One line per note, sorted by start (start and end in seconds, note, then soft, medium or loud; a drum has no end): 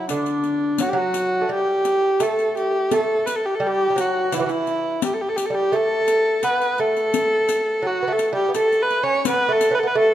0.00 0.10 F#3 medium
0.09 0.82 D3 medium
0.09 0.84 D4 medium
0.09 riq soft
0.26 riq soft
0.44 riq soft
0.78 0.92 F#3 medium
0.78 0.90 F#4 medium
0.78 riq medium
0.89 0.99 G4 medium
0.93 1.44 F#3 medium
0.97 1.52 F#4 medium
1.14 riq soft
1.41 1.49 A3 medium
1.49 2.22 G3 medium
1.54 2.24 G4 medium
1.85 riq soft
2.20 2.90 A3 medium
2.20 2.57 A4 medium
2.20 riq medium
2.39 riq soft
2.57 2.96 G4 medium
2.57 riq soft
2.91 3.23 A3 medium
2.91 3.27 A4 medium
2.91 riq medium
3.26 3.37 B4 medium
3.26 riq soft
3.36 3.47 A4 medium
3.45 3.56 G4 medium
3.55 3.69 A4 medium
3.60 3.89 G3 medium
3.67 4.02 G4 medium
3.90 3.96 G3 medium
3.96 4.33 F#3 medium
3.96 riq soft
4.01 4.36 F#4 medium
4.32 4.36 E3 medium
4.32 4.43 E4 medium
4.32 riq soft
4.37 4.45 E3 medium
4.37 4.40 F#3 medium
4.42 4.51 F#4 medium
4.46 4.99 E3 medium
4.46 5.04 E4 medium
4.46 riq soft
4.67 riq soft
5.02 5.15 G4 medium
5.02 riq medium
5.14 5.23 A4 medium
5.21 5.30 G4 medium
5.29 5.38 A4 medium
5.37 5.47 G4 medium
5.37 riq soft
5.46 5.56 A4 medium
5.50 5.73 G3 medium
5.55 5.77 G4 medium
5.72 6.39 A3 medium
5.72 6.45 A4 loud
5.72 riq soft
6.08 riq soft
6.43 6.79 B3 medium
6.43 6.82 B4 medium
6.43 riq soft
6.61 riq soft
6.78 7.88 A3 medium
6.78 7.88 A4 loud
6.78 riq soft
6.97 riq soft
7.14 riq medium
7.49 riq medium
7.82 8.02 F#3 medium
7.87 8.14 F#4 medium
8.03 8.07 B3 medium
8.08 8.32 A3 medium
8.12 8.34 A4 medium
8.19 riq soft
8.33 8.49 G3 medium
8.33 8.55 G4 medium
8.49 8.55 B3 medium
8.55 9.03 A3 medium
8.55 8.84 A4 medium
8.55 riq soft
8.72 riq soft
8.82 9.05 B4 medium
8.91 riq soft
9.03 9.25 C#4 medium
9.03 9.26 C#5 medium
9.25 9.48 B3 medium
9.25 9.54 B4 medium
9.25 riq medium
9.49 9.70 A3 medium
9.49 9.76 A4 loud
9.61 riq soft
9.70 9.82 B3 medium
9.70 9.73 C#4 medium
9.75 9.81 B4 medium
9.79 9.95 B3 medium
9.79 9.89 A4 medium
9.87 9.98 B4 medium
9.95 10.14 A3 medium
10.00 10.14 A4 medium